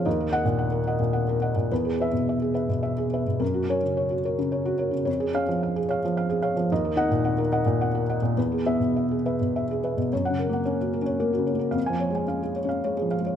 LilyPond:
<<
  \new Staff \with { instrumentName = "Felt piano" } { \time 3/4 \key ges \lydian \tempo 4 = 109 << { r8 ges''16 r2 r16 | r8 e''16 r2 r16 | r8 des''16 r2 r16 | r8 f''16 r2 r16 |
r8 ges''16 r2 r16 | r8 e''16 r2 r16 | r16 ges''8 r2 r16 | r16 aes''8 r2 r16 | } \\ { ees''16 bes'16 ees''16 bes,16 ges''16 bes'16 <ees'' ges''>16 bes,16 ges''16 bes'16 <ees'' ges''>16 bes,16 | b'16 gis'16 b'16 b,16 e''16 gis'16 <b' e''>16 b,16 e''16 gis'16 <b' e''>16 b,16 | bes'16 ges'16 bes'16 des16 des''16 ges'16 <bes' des''>16 des16 des''16 ges'16 <bes' des''>16 des16 | des''16 aes'16 des''16 f16 f''16 aes'16 <des'' f''>16 f16 f''16 aes'16 <des'' f''>16 f16 |
ees''16 bes'16 ees''16 bes,16 ges''16 bes'16 <ees'' ges''>16 bes,16 ges''16 bes'16 <ees'' ges''>16 bes,16 | b'16 gis'16 b'16 b,16 e''16 gis'16 <b' e''>16 b,16 e''16 gis'16 <b' e''>16 b,16 | des''8 bes'16 ges''16 des''16 ges'16 bes'16 des''16 bes'16 ges'16 des''16 bes'16 | f''8 des''16 aes''16 f''16 aes'16 des''16 f''16 des''16 aes'16 f''16 des''16 | } >> }
  \new Staff \with { instrumentName = "Felt piano" } { \clef bass \time 3/4 \key ges \lydian ees,2. | e,2. | ges,8 des'4 r4. | f,8 des'4 r4. |
ees,8 ees'4 r4. | e,8 b4 r4. | \tuplet 3/2 { ges,8 des8 bes8 des'4 des'8 bes8 des8 bes8 } | \tuplet 3/2 { f,8 f8 aes8 des'4 des'8 aes8 f8 aes8 } | }
>>